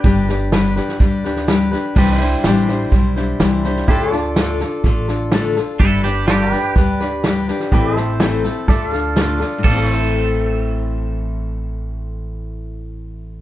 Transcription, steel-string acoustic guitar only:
\new Staff \with { instrumentName = "Steel-string acoustic guitar" } { \time 4/4 \key a \minor \tempo 4 = 125 <g d' g' b'>8 <d' g' b'>8 <g d' g' b'>8 <d' g' b'>8 <g d' g' b'>8 <d' g' b'>8 <g d' g' b'>8 <d' g' b'>8 | <c e g d' e' c''>8 <g d' e' c''>8 <c e g d' e' c''>8 <g d' e' c''>8 <g d' e' c''>8 <g d' e' c''>8 <c e g d' e' c''>8 <g d' e' c''>8 | <d a d' f' a'>8 <d' f' a'>8 <d a d' f' a'>8 <d' f' a'>8 <a d' f' a'>8 <d' f' a'>8 <d a d' f' a'>8 <d' f' a'>8 | <g d' g' b'>8 <d' g' b'>8 <g d' g' b'>8 <d' g' b'>8 <g d' g' b'>8 <d' g' b'>8 <g d' g' b'>8 <d' g' b'>8 |
<a, e a c' e' a'>8 <a c' e' a'>8 <a, e a c' e' a'>8 <a c' e' a'>8 <a d' f' a'>8 <d' f' a'>8 <d a d' f' a'>8 <d' f' a'>8 | <a, e a c' e' a'>1~ | <a, e a c' e' a'>1 | }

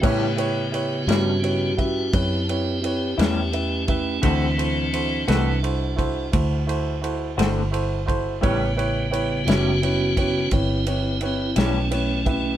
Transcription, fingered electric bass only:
\new Staff \with { instrumentName = "Fingered electric bass" } { \clef bass \time 12/8 \key a \mixolydian \tempo 4. = 57 a,4. g,4. fis,4. e,4. | d,4. c,4. d,4. g,,4. | a,,4. fis,,4. g,,4. b,,4. | }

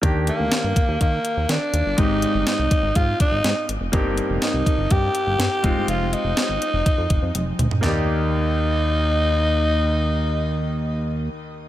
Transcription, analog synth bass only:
\new Staff \with { instrumentName = "Analog synth bass" } { \clef bass \time 4/4 \key ees \major \tempo 4 = 123 ees,8. d,16 r16 g,16 r16 ees,16 ees8 r16 ees,16 ees16 r16 ees,16 g,,16 | aes,,8. g,,16 r16 c,16 r16 aes,,16 aes,8 r16 aes,,16 aes,16 r16 aes,,16 f,,16 | g,,8. f,,16 r16 c,16 r16 g,,16 g,8 r16 g,,16 g,16 r16 f,,16 g,,16 | f,,8. f,,16 r16 aes,,16 r16 f,,16 r16 f,16 f,,16 f,16 f,,8 d,16 r16 |
ees,1~ | ees,1 | }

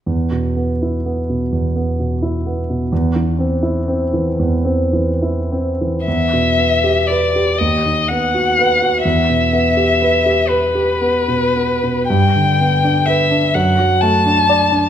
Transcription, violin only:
\new Staff \with { instrumentName = "Violin" } { \time 6/8 \key e \minor \tempo 4. = 41 r2. | r2. | e''4 d''8 dis''8 fis''4 | e''4. b'4. |
g''4 e''8 fis''8 a''4 | }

